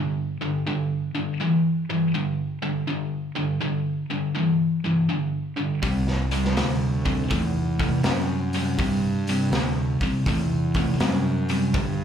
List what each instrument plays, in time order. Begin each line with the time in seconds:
Already playing: distorted electric guitar G2 D3
0.41 distorted electric guitar G2 D3
0.67 distorted electric guitar G2 D3
1.15 distorted electric guitar G2 D3
1.40 distorted electric guitar G2 E3
1.90 distorted electric guitar G2 E3
2.14 distorted electric guitar G2 D3
2.62 distorted electric guitar G2 D3
2.88 distorted electric guitar G2 D3
3.36 distorted electric guitar G2 D3
3.61 distorted electric guitar G2 D3
4.10 distorted electric guitar G2 D3
4.35 distorted electric guitar G2 E3
4.84 distorted electric guitar G2 E3
5.09 distorted electric guitar G2 D3
5.57 distorted electric guitar G2 D3
5.82 fingered electric bass C2, distorted electric guitar C3 G3, kick, open hi-hat
6.07 snare
6.31 distorted electric guitar C3 G3, open hi-hat
6.45 snare
6.57 fingered electric bass D2, distorted electric guitar C3 G3, snare, open hi-hat
7.06 distorted electric guitar C3 G3, kick, open hi-hat
7.30 fingered electric bass E2, distorted electric guitar C3 A3, kick, open hi-hat
7.79 distorted electric guitar C3 A3, kick, open hi-hat
8.04 fingered electric bass F#2, distorted electric guitar C3 G3, snare, open hi-hat
8.53 distorted electric guitar C3 G3, open hi-hat
8.78 fingered electric bass G2, distorted electric guitar C3 G3, kick, open hi-hat
9.27 distorted electric guitar C3 G3, open hi-hat
9.52 fingered electric bass D2, distorted electric guitar C3 G3, snare, open hi-hat
10.00 distorted electric guitar C3 G3, muted fingered electric bass stroke, kick, open hi-hat
10.26 fingered electric bass E2, distorted electric guitar C3 A3, kick, open hi-hat
10.74 distorted electric guitar C3 A3, kick, open hi-hat
11.00 fingered electric bass F#2, distorted electric guitar C3 G3, snare, open hi-hat
11.49 distorted electric guitar C3 G3, open hi-hat
11.74 fingered electric bass G2, distorted electric guitar G2 D3, kick, open hi-hat